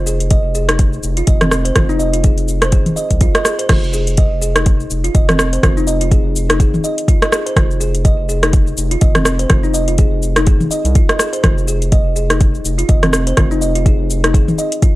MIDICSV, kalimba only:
0, 0, Header, 1, 2, 480
1, 0, Start_track
1, 0, Key_signature, -4, "minor"
1, 0, Tempo, 483871
1, 1746, Time_signature, 4, 2, 24, 8
1, 14836, End_track
2, 0, Start_track
2, 0, Title_t, "Kalimba"
2, 0, Program_c, 0, 108
2, 65, Note_on_c, 0, 68, 78
2, 190, Note_off_c, 0, 68, 0
2, 306, Note_on_c, 0, 75, 85
2, 437, Note_off_c, 0, 75, 0
2, 545, Note_on_c, 0, 68, 78
2, 670, Note_off_c, 0, 68, 0
2, 682, Note_on_c, 0, 63, 76
2, 780, Note_off_c, 0, 63, 0
2, 1161, Note_on_c, 0, 65, 81
2, 1254, Note_off_c, 0, 65, 0
2, 1260, Note_on_c, 0, 75, 77
2, 1394, Note_off_c, 0, 75, 0
2, 1397, Note_on_c, 0, 60, 78
2, 1456, Note_off_c, 0, 60, 0
2, 1635, Note_on_c, 0, 72, 77
2, 1731, Note_off_c, 0, 72, 0
2, 1741, Note_on_c, 0, 65, 76
2, 1818, Note_off_c, 0, 65, 0
2, 1877, Note_on_c, 0, 63, 108
2, 1936, Note_off_c, 0, 63, 0
2, 1978, Note_on_c, 0, 75, 82
2, 2113, Note_off_c, 0, 75, 0
2, 2115, Note_on_c, 0, 65, 79
2, 2211, Note_off_c, 0, 65, 0
2, 2217, Note_on_c, 0, 68, 81
2, 2346, Note_off_c, 0, 68, 0
2, 2598, Note_on_c, 0, 72, 78
2, 2693, Note_off_c, 0, 72, 0
2, 2701, Note_on_c, 0, 68, 84
2, 2828, Note_off_c, 0, 68, 0
2, 2939, Note_on_c, 0, 75, 74
2, 3074, Note_off_c, 0, 75, 0
2, 3184, Note_on_c, 0, 65, 82
2, 3309, Note_off_c, 0, 65, 0
2, 3320, Note_on_c, 0, 75, 77
2, 3414, Note_off_c, 0, 75, 0
2, 3422, Note_on_c, 0, 68, 77
2, 3549, Note_off_c, 0, 68, 0
2, 3558, Note_on_c, 0, 72, 77
2, 3653, Note_off_c, 0, 72, 0
2, 3662, Note_on_c, 0, 65, 79
2, 3795, Note_off_c, 0, 65, 0
2, 3904, Note_on_c, 0, 68, 81
2, 4029, Note_off_c, 0, 68, 0
2, 4145, Note_on_c, 0, 75, 87
2, 4277, Note_off_c, 0, 75, 0
2, 4380, Note_on_c, 0, 68, 77
2, 4507, Note_off_c, 0, 68, 0
2, 4520, Note_on_c, 0, 63, 77
2, 4619, Note_off_c, 0, 63, 0
2, 5001, Note_on_c, 0, 65, 83
2, 5094, Note_off_c, 0, 65, 0
2, 5105, Note_on_c, 0, 75, 83
2, 5236, Note_off_c, 0, 75, 0
2, 5244, Note_on_c, 0, 60, 72
2, 5299, Note_off_c, 0, 60, 0
2, 5486, Note_on_c, 0, 72, 76
2, 5577, Note_off_c, 0, 72, 0
2, 5588, Note_on_c, 0, 65, 83
2, 5661, Note_off_c, 0, 65, 0
2, 5725, Note_on_c, 0, 63, 103
2, 5780, Note_off_c, 0, 63, 0
2, 5825, Note_on_c, 0, 75, 79
2, 5957, Note_off_c, 0, 75, 0
2, 5963, Note_on_c, 0, 65, 76
2, 6055, Note_off_c, 0, 65, 0
2, 6063, Note_on_c, 0, 68, 82
2, 6189, Note_off_c, 0, 68, 0
2, 6442, Note_on_c, 0, 63, 100
2, 6535, Note_off_c, 0, 63, 0
2, 6547, Note_on_c, 0, 68, 85
2, 6671, Note_off_c, 0, 68, 0
2, 6785, Note_on_c, 0, 75, 78
2, 6917, Note_off_c, 0, 75, 0
2, 7025, Note_on_c, 0, 65, 84
2, 7150, Note_off_c, 0, 65, 0
2, 7163, Note_on_c, 0, 75, 78
2, 7255, Note_off_c, 0, 75, 0
2, 7265, Note_on_c, 0, 68, 79
2, 7390, Note_off_c, 0, 68, 0
2, 7403, Note_on_c, 0, 72, 78
2, 7495, Note_off_c, 0, 72, 0
2, 7505, Note_on_c, 0, 65, 80
2, 7637, Note_off_c, 0, 65, 0
2, 7742, Note_on_c, 0, 68, 79
2, 7869, Note_off_c, 0, 68, 0
2, 7983, Note_on_c, 0, 75, 84
2, 8116, Note_off_c, 0, 75, 0
2, 8223, Note_on_c, 0, 68, 79
2, 8349, Note_off_c, 0, 68, 0
2, 8360, Note_on_c, 0, 63, 80
2, 8459, Note_off_c, 0, 63, 0
2, 8841, Note_on_c, 0, 65, 83
2, 8934, Note_off_c, 0, 65, 0
2, 8940, Note_on_c, 0, 75, 79
2, 9074, Note_off_c, 0, 75, 0
2, 9080, Note_on_c, 0, 60, 73
2, 9137, Note_off_c, 0, 60, 0
2, 9319, Note_on_c, 0, 72, 77
2, 9413, Note_off_c, 0, 72, 0
2, 9420, Note_on_c, 0, 65, 78
2, 9498, Note_off_c, 0, 65, 0
2, 9557, Note_on_c, 0, 63, 100
2, 9615, Note_off_c, 0, 63, 0
2, 9662, Note_on_c, 0, 75, 80
2, 9796, Note_off_c, 0, 75, 0
2, 9802, Note_on_c, 0, 65, 80
2, 9895, Note_off_c, 0, 65, 0
2, 9906, Note_on_c, 0, 68, 89
2, 10030, Note_off_c, 0, 68, 0
2, 10283, Note_on_c, 0, 63, 103
2, 10375, Note_off_c, 0, 63, 0
2, 10382, Note_on_c, 0, 68, 83
2, 10508, Note_off_c, 0, 68, 0
2, 10622, Note_on_c, 0, 75, 74
2, 10755, Note_off_c, 0, 75, 0
2, 10865, Note_on_c, 0, 65, 80
2, 10990, Note_off_c, 0, 65, 0
2, 11000, Note_on_c, 0, 75, 72
2, 11094, Note_off_c, 0, 75, 0
2, 11102, Note_on_c, 0, 68, 78
2, 11229, Note_off_c, 0, 68, 0
2, 11237, Note_on_c, 0, 72, 75
2, 11332, Note_off_c, 0, 72, 0
2, 11341, Note_on_c, 0, 65, 78
2, 11475, Note_off_c, 0, 65, 0
2, 11583, Note_on_c, 0, 68, 77
2, 11709, Note_off_c, 0, 68, 0
2, 11823, Note_on_c, 0, 75, 85
2, 11956, Note_off_c, 0, 75, 0
2, 12061, Note_on_c, 0, 68, 77
2, 12188, Note_off_c, 0, 68, 0
2, 12202, Note_on_c, 0, 63, 77
2, 12300, Note_off_c, 0, 63, 0
2, 12679, Note_on_c, 0, 65, 81
2, 12773, Note_off_c, 0, 65, 0
2, 12783, Note_on_c, 0, 75, 79
2, 12916, Note_off_c, 0, 75, 0
2, 12922, Note_on_c, 0, 60, 78
2, 12978, Note_off_c, 0, 60, 0
2, 13163, Note_on_c, 0, 72, 79
2, 13255, Note_off_c, 0, 72, 0
2, 13264, Note_on_c, 0, 65, 80
2, 13340, Note_off_c, 0, 65, 0
2, 13402, Note_on_c, 0, 63, 102
2, 13458, Note_off_c, 0, 63, 0
2, 13505, Note_on_c, 0, 75, 77
2, 13637, Note_off_c, 0, 75, 0
2, 13643, Note_on_c, 0, 65, 79
2, 13735, Note_off_c, 0, 65, 0
2, 13747, Note_on_c, 0, 68, 86
2, 13871, Note_off_c, 0, 68, 0
2, 14125, Note_on_c, 0, 63, 105
2, 14216, Note_off_c, 0, 63, 0
2, 14227, Note_on_c, 0, 68, 92
2, 14351, Note_off_c, 0, 68, 0
2, 14468, Note_on_c, 0, 75, 78
2, 14598, Note_off_c, 0, 75, 0
2, 14709, Note_on_c, 0, 65, 79
2, 14832, Note_off_c, 0, 65, 0
2, 14836, End_track
0, 0, End_of_file